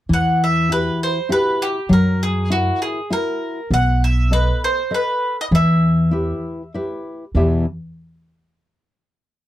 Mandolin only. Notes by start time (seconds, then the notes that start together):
0.13 F#5
0.44 E5
0.72 B4
1.03 C5
1.32 B4
1.62 G4
1.93 A#4
2.23 G#4
2.52 F#4
2.82 G#4
3.13 A#4
3.74 F#5
4.04 E5
4.33 B4
4.64 C5
4.94 B4
5.41 D#5
5.55 E5